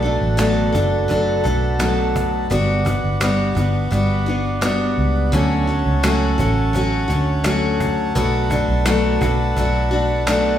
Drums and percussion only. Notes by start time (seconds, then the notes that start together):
0.04 cajon slap
0.22 cajon slap
0.39 cajon slap, clap
0.58 cajon slap
0.75 cajon bass
0.92 cajon slap
1.10 cajon bass
1.27 cajon slap
1.45 cajon bass
1.62 cajon slap
1.80 cajon slap, clap
1.98 cajon slap
2.16 cajon bass
2.33 cajon slap
2.51 cajon bass
2.69 cajon slap
2.86 cajon bass
3.04 cajon slap
3.21 cajon slap, clap
3.40 cajon slap
3.57 cajon bass
3.74 cajon slap
3.92 cajon bass
4.28 cajon slap
4.45 cajon slap
4.62 cajon slap, clap
4.80 cajon slap
4.98 cajon slap
5.16 cajon slap
5.33 cajon bass
5.52 cajon slap
5.69 cajon slap
5.86 cajon slap
6.04 cajon slap, clap
6.23 cajon slap
6.39 cajon bass
6.57 cajon slap
6.74 cajon bass
6.92 cajon slap
7.10 cajon bass
7.27 cajon slap
7.44 cajon slap, clap
7.63 cajon slap
7.80 cajon bass
7.98 cajon slap
8.16 cajon bass
8.51 cajon bass
8.68 cajon slap
8.86 cajon slap, clap
9.21 cajon bass
9.39 cajon slap
9.57 cajon bass
9.74 cajon slap
9.92 cajon slap
10.10 cajon slap
10.27 cajon slap, clap
10.45 cajon slap